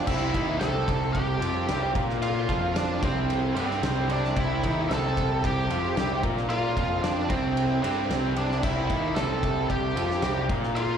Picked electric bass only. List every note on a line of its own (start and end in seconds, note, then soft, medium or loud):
0.07 0.32 C2 medium
0.34 0.59 D#2 medium
0.62 1.38 C2 loud
1.42 1.67 F2 loud
1.69 1.94 C2 medium
1.95 2.45 A#2 medium
2.49 2.99 F2 medium
3.02 3.52 C2 loud
3.56 3.81 G2 loud
3.82 4.32 C2 medium
4.37 4.61 C2 medium
4.64 4.88 D#2 medium
4.91 5.66 C2 medium
5.70 5.95 F2 medium
5.96 6.21 C2 loud
6.23 6.73 A#2 loud
6.77 7.26 F2 medium
7.30 7.80 C2 loud
7.83 8.08 G2 medium
8.10 8.60 C2 loud
8.63 8.88 C2 medium
8.90 9.15 D#2 loud
9.17 9.93 C2 medium
9.97 10.21 F2 loud
10.23 10.48 C2 loud
10.49 10.98 A#2 medium